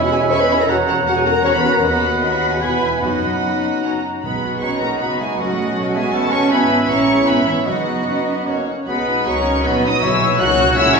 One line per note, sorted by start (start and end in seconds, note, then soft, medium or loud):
0.00 0.26 E1 medium
0.00 0.26 E2 medium
0.00 0.71 G#3 medium
0.00 0.12 F#4 medium
0.00 1.79 C#5 medium
0.00 0.70 E5 medium
0.00 0.12 F#5 medium
0.00 0.70 B5 medium
0.11 0.20 C#4 medium
0.11 0.20 E4 medium
0.11 0.30 G#4 loud
0.11 0.31 G#5 medium
0.11 0.20 G#5 medium
0.11 0.19 B5 medium
0.30 0.65 E1 medium
0.30 0.64 E2 medium
0.30 0.39 C#4 medium
0.30 0.39 E4 medium
0.30 0.40 C#5 loud
0.30 0.39 G#5 medium
0.30 0.39 B5 medium
0.30 0.40 C#6 medium
0.39 0.59 B4 loud
0.39 0.59 B5 medium
0.50 0.58 C#4 medium
0.50 0.58 E4 medium
0.50 0.58 G#5 medium
0.50 0.58 B5 medium
0.59 0.69 A#4 medium
0.59 0.63 A#5 medium
0.69 1.02 E1 medium
0.69 1.02 E2 medium
0.69 2.63 F#3 medium
0.69 0.76 C#4 medium
0.69 0.77 F#4 medium
0.69 0.77 F#5 medium
0.69 2.62 F#5 medium
0.69 0.76 A#5 medium
0.69 1.84 A#5 medium
0.88 0.96 C#4 medium
0.88 0.95 F#4 medium
0.88 0.96 F#5 medium
0.88 0.95 A#5 medium
1.06 1.40 E1 medium
1.06 1.40 E2 medium
1.06 1.14 C#4 medium
1.06 1.14 F#4 medium
1.06 1.16 F#4 loud
1.06 1.16 F#5 medium
1.06 1.15 F#5 medium
1.06 1.15 A#5 medium
1.17 1.21 G#4 medium
1.17 1.26 G#5 medium
1.25 1.33 C#4 medium
1.25 1.33 F#4 medium
1.25 1.45 A#4 loud
1.25 1.34 F#5 medium
1.25 1.45 A#5 medium
1.25 1.34 A#5 medium
1.44 1.78 E1 medium
1.44 1.78 E2 medium
1.44 1.52 C#4 medium
1.44 1.52 F#4 medium
1.44 1.54 C#5 loud
1.44 1.53 F#5 medium
1.44 1.53 A#5 medium
1.44 1.54 C#6 medium
1.53 1.74 B4 loud
1.53 1.73 B5 medium
1.64 1.72 C#4 medium
1.64 1.71 F#4 medium
1.64 1.73 F#5 medium
1.64 1.73 A#5 medium
1.72 1.84 A#4 medium
1.72 1.82 A#5 medium
1.82 2.57 D#2 medium
1.82 2.19 B3 medium
1.82 2.19 F#4 medium
1.82 2.59 D#5 medium
1.82 2.19 F#5 medium
1.82 3.54 B5 medium
1.82 2.19 B5 medium
2.20 2.60 B3 medium
2.20 2.27 D#4 medium
2.20 2.61 F#4 medium
2.20 2.25 D#5 medium
2.20 2.61 F#5 medium
2.20 2.61 B5 medium
2.30 2.35 E5 medium
2.35 2.43 E4 medium
2.40 2.52 F#4 medium
2.40 2.44 F#5 medium
2.50 2.54 G#5 medium
2.54 2.63 G#4 medium
2.60 3.01 E1 medium
2.60 3.01 E2 medium
2.60 3.04 E3 medium
2.60 3.01 B3 medium
2.60 2.82 F#4 medium
2.60 3.03 B4 medium
2.60 2.81 F#5 medium
2.60 3.01 G#5 medium
2.60 3.02 G#5 medium
2.60 3.01 B5 medium
2.80 3.02 E4 medium
2.80 2.88 E5 medium
3.00 4.04 F#1 medium
3.00 3.59 F#2 medium
3.00 4.05 F#2 medium
3.00 4.05 F#3 medium
3.00 3.83 B3 medium
3.00 4.03 D#4 medium
3.00 3.82 F#4 medium
3.00 4.01 D#5 medium
3.00 3.55 D#5 medium
3.00 4.02 F#5 soft
3.00 3.82 F#5 medium
3.00 3.82 B5 medium
3.83 3.91 C#4 soft
3.83 4.04 F#4 soft
3.83 4.03 C#5 soft
3.83 3.91 F#5 soft
3.83 4.03 A#5 soft
4.23 4.60 B1 soft
4.23 4.78 B2 medium
4.23 4.60 G#3 soft
4.23 6.48 B3 soft
4.23 4.61 B3 medium
4.23 4.42 D#4 soft
4.23 6.48 F#4 soft
4.23 4.97 G#4 soft
4.23 5.73 B4 soft
4.23 4.65 B4 medium
4.23 6.47 D#5 soft
4.23 4.65 F#5 medium
4.23 4.60 B5 medium
4.43 4.61 F#4 soft
4.61 5.00 A#1 soft
4.61 5.01 F#3 soft
4.61 4.83 C#4 medium
4.61 5.35 D#4 soft
4.61 5.00 F#4 soft
4.61 4.83 C#5 medium
4.61 4.83 A#5 medium
4.61 4.81 C#6 medium
4.80 5.01 A#3 soft
4.80 5.03 A#4 medium
4.80 5.00 F#5 medium
4.80 5.00 A#5 medium
5.00 5.38 F#1 soft
5.00 5.38 B3 medium
5.00 5.09 B3 medium
5.00 5.39 D#4 medium
5.00 5.38 F#4 medium
5.00 5.20 B4 medium
5.00 5.06 F#5 medium
5.00 5.19 B5 medium
5.19 5.39 G#3 medium
5.19 5.38 G#4 medium
5.19 5.26 E5 medium
5.19 5.38 G#5 medium
5.38 5.76 A1 medium
5.38 5.95 F#3 medium
5.38 5.56 A3 medium
5.38 5.76 C#4 medium
5.38 6.49 F#4 medium
5.38 5.94 F#4 medium
5.38 5.75 F#4 medium
5.38 5.94 D#5 medium
5.38 5.95 F#5 medium
5.57 5.76 A3 medium
5.76 6.13 B1 medium
5.76 5.96 C#4 medium
5.76 6.50 F#4 medium
5.76 6.14 A4 medium
5.95 6.14 G#3 medium
5.95 6.13 B3 medium
5.95 6.15 G#4 medium
5.95 6.01 E5 medium
5.95 6.14 G#5 medium
6.13 6.51 A1 medium
6.13 6.22 A3 medium
6.13 6.51 B3 medium
6.13 6.51 C#4 medium
6.13 6.34 A4 medium
6.13 6.51 B4 medium
6.13 6.32 F#5 medium
6.13 6.32 A5 medium
6.32 6.51 C#4 medium
6.32 6.50 C#5 medium
6.32 6.53 A5 medium
6.32 6.51 C#6 loud
6.51 6.88 G#1 medium
6.51 6.89 B3 medium
6.51 7.24 B3 medium
6.51 6.90 B3 medium
6.51 6.69 E4 medium
6.51 7.23 E4 medium
6.51 7.65 E4 medium
6.51 6.88 G#4 medium
6.51 6.88 B4 medium
6.51 7.23 E5 medium
6.51 6.89 G#5 medium
6.51 6.88 B5 medium
6.70 7.65 E4 medium
6.89 7.26 A#1 medium
6.89 7.09 A#3 medium
6.89 7.27 C#4 medium
6.89 7.28 C#5 medium
6.89 7.67 C#5 medium
6.89 7.26 A#5 medium
6.89 7.27 C#6 medium
7.09 7.66 G#3 medium
7.26 7.66 G#1 medium
7.26 7.46 B3 medium
7.26 7.66 B3 medium
7.26 7.67 E4 medium
7.26 7.48 B4 medium
7.26 7.68 E5 medium
7.26 7.45 G#5 medium
7.26 7.47 B5 medium
7.45 7.66 E3 medium
7.45 7.67 E4 medium
7.45 7.67 C#5 medium
7.45 7.67 E5 medium
7.66 8.07 F#1 medium
7.66 8.67 F#3 medium
7.66 8.03 B3 soft
7.66 8.48 B3 soft
7.66 8.65 D#4 medium
7.66 8.48 D#4 soft
7.66 8.45 F#4 soft
7.66 8.65 F#4 medium
7.66 8.03 F#4 soft
7.66 8.47 B4 medium
7.66 8.61 D#5 medium
7.66 8.48 D#5 soft
7.66 8.65 F#5 medium
8.06 8.46 F#2 medium
8.06 8.17 C#4 medium
8.29 8.37 D#4 medium
8.46 8.86 F#1 soft
8.46 8.67 A#3 medium
8.46 8.67 A#3 soft
8.46 8.55 C#4 medium
8.46 8.67 F#4 soft
8.46 8.67 C#5 soft
8.46 8.68 C#5 soft
8.67 8.86 C#4 medium
8.86 9.25 B1 medium
8.86 9.23 G#3 medium
8.86 9.23 B3 medium
8.86 9.61 B3 medium
8.86 9.05 D#4 medium
8.86 9.61 D#4 medium
8.86 9.60 F#4 medium
8.86 9.29 B4 medium
8.86 9.24 B4 medium
8.86 9.60 D#5 medium
8.86 9.27 F#5 medium
8.86 9.23 B5 medium
9.07 9.15 D#4 medium
9.26 9.64 C#2 medium
9.26 10.03 F#3 medium
9.26 9.46 B3 medium
9.26 9.65 C#4 medium
9.26 10.04 F#4 medium
9.26 9.65 A#4 medium
9.26 9.65 C#5 medium
9.26 9.64 A#5 medium
9.26 9.65 C#6 medium
9.46 9.65 C#4 medium
9.63 10.02 A#1 medium
9.63 10.02 B3 medium
9.63 9.84 B3 medium
9.63 10.03 D#4 medium
9.63 10.03 F#4 medium
9.63 10.02 F#4 medium
9.63 10.03 B4 medium
9.63 9.74 B4 medium
9.63 10.01 D#5 medium
9.63 9.83 F#5 medium
9.63 9.83 B5 medium
9.83 10.03 D#4 medium
9.83 10.04 D#5 medium
9.83 9.90 B5 medium
9.83 10.02 D#6 medium
10.02 10.39 B1 medium
10.02 10.55 B2 medium
10.02 10.40 E3 medium
10.02 10.38 A#3 medium
10.02 10.41 E4 medium
10.02 10.40 E4 medium
10.02 10.39 E4 medium
10.02 10.39 F#4 medium
10.02 10.40 G#4 medium
10.02 10.38 C#5 medium
10.02 10.11 C#5 medium
10.02 10.42 E5 medium
10.02 10.39 C#6 medium
10.02 10.40 E6 medium
10.21 10.76 C#5 medium
10.39 10.77 C#2 medium
10.39 10.76 A#3 medium
10.39 11.00 C#4 medium
10.39 10.58 D#4 medium
10.39 10.77 F#4 medium
10.39 10.76 F#4 medium
10.39 10.77 F#4 medium
10.39 10.76 C#5 medium
10.39 10.78 F#5 loud
10.39 10.77 C#6 loud
10.39 10.76 F#6 loud
10.58 10.76 C#4 medium
10.76 11.00 A#1 medium
10.76 11.00 G#3 medium
10.76 11.00 A#3 medium
10.76 11.00 C#4 medium
10.76 10.96 E4 loud
10.76 11.00 F#4 medium
10.76 11.00 C#5 medium
10.76 10.97 E5 loud
10.76 10.83 C#6 medium
10.76 10.95 E6 loud
10.95 11.00 C#4 loud
10.95 11.00 C#5 loud
10.95 11.00 A#5 loud
10.95 11.00 C#6 loud